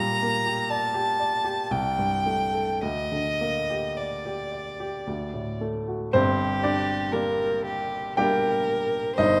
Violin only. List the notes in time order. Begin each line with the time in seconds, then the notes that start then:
Already playing: A#5
0.70 A5
1.71 G5
2.81 D#5
3.97 D5
6.13 G4
7.12 A#4
7.65 G4
8.18 A#4
9.16 C5